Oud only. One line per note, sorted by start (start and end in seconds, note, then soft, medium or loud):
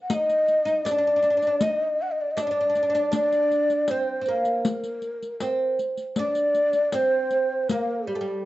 0.10 0.64 D#4 medium
0.65 0.85 D#4 medium
0.85 0.90 D4 medium
0.91 0.97 D4 medium
0.98 1.06 D4 medium
1.07 1.15 D4 soft
1.16 1.21 D4 medium
1.22 1.29 D4 medium
1.30 1.36 D4 medium
1.37 1.46 D4 soft
1.47 1.54 D4 medium
1.62 1.99 D#4 medium
2.37 2.45 D4 medium
2.47 2.50 D4 medium
2.51 2.59 D4 medium
2.60 2.68 D4 medium
2.69 2.75 D4 medium
2.76 2.81 D4 soft
2.83 2.88 D4 medium
2.90 2.94 D4 medium
2.95 3.04 D4 medium
3.12 3.90 D4 medium
3.91 4.20 C4 medium
4.21 4.28 C4 medium
4.28 5.46 A#3 medium
5.42 5.77 C4 medium
6.19 6.93 D4 medium
6.94 7.66 C4 medium
7.71 8.06 A#3 medium
8.07 8.15 G3 medium
8.15 8.20 A3 medium
8.21 8.45 G3 medium